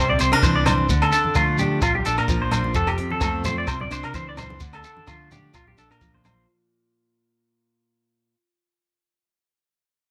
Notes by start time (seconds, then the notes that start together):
Already playing: C2 C3 C4
0.09 D5, low conga
0.19 C2 C4 C5, closed hi-hat, shekere
0.32 C3 D4 A#4, cross-stick, low agogo
0.43 C2 E3 C4 C5, kick, shekere
0.56 D5
0.66 D4 C5, cross-stick, closed hi-hat, low conga, low agogo, shekere
0.78 high conga
0.89 D2 D3, kick, shekere
1.02 A4, cross-stick, low agogo
1.12 D4 A4, closed hi-hat, shekere
1.25 high conga
1.35 D3 F3 A3 F4, kick, cross-stick, low agogo, shekere
1.58 D4 G4, closed hi-hat, low conga, shekere
1.82 A#1 A#2 F4, kick, cross-stick, low agogo, shekere
1.94 G4, low conga
2.05 A#1 D4 A4, closed hi-hat, shekere
2.18 A#2 A#4, cross-stick, low agogo
2.28 A#1 F3 A#3, kick, shekere
2.42 C5
2.52 D4 C5, cross-stick, closed hi-hat, low conga, low agogo, shekere
2.64 high conga
2.74 F1 F2 A4, kick, shekere
2.87 G4, cross-stick, low agogo
2.98 C4, closed hi-hat
3.10 A4, high conga
3.21 F2 F3 A3 A4, kick, cross-stick, low agogo, shekere
3.44 C4 C5, closed hi-hat, high conga, low conga, shekere
3.58 D5
3.67 C2 C3 C5, kick, cross-stick, low agogo, shekere
3.80 D5, low conga
3.91 C2 D4 C5, closed hi-hat, shekere
4.03 C3 A#4, cross-stick, low agogo
4.14 C#2 E3 C4 C5, kick, shekere
4.29 D5
4.37 D4 C5, cross-stick, closed hi-hat, low conga, low agogo, shekere
4.50 high conga
4.60 D2 D3, kick, shekere
4.73 A4, cross-stick, low agogo
4.84 D4 A4, closed hi-hat, shekere
4.97 high conga
5.07 D3 F3 A3 F4, kick, cross-stick, low agogo, shekere
5.31 D4 G4, closed hi-hat, high conga, low conga, shekere
5.54 A#1 A#2 F4, kick, cross-stick, low agogo, shekere
5.67 G4, low conga
5.78 A#1 D4 A4, closed hi-hat, shekere
5.90 A#2 A#4, cross-stick, low agogo
6.01 A#1 F3 A#3, kick, shekere
6.14 C5, high conga
6.24 D4 C5, cross-stick, closed hi-hat, low conga, low agogo, shekere